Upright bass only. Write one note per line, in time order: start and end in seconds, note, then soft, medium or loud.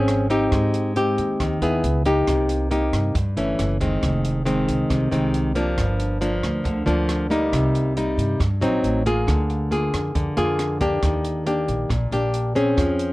0.00 0.48 G#1 medium
0.52 1.14 G#2 medium
1.18 1.38 D#2 medium
1.40 1.60 D#2 medium
1.61 1.82 D#2 medium
1.84 2.24 C#2 loud
2.27 2.89 C2 medium
2.93 3.13 G2 medium
3.15 3.35 G2 medium
3.37 3.57 G1 medium
3.59 4.00 F#1 medium
4.03 4.64 F1 medium
4.69 4.89 C2 medium
4.90 5.10 C2 medium
5.12 5.74 C2 medium
5.78 6.39 G1 medium
6.43 6.64 D2 medium
6.65 6.85 D2 medium
6.87 7.48 D2 medium
7.53 8.14 C2 loud
8.18 8.38 G2 medium
8.40 8.60 G2 medium
8.61 8.82 A#1 medium
8.83 9.24 A1 loud
9.28 9.89 D2 medium
9.94 10.14 F2 medium
10.15 10.35 F2 medium
10.37 10.99 F2 medium
11.03 11.64 D#2 medium
11.68 11.88 A#1 medium
11.90 12.10 A#1 medium
12.12 12.73 A#1 medium
12.78 13.13 F2 medium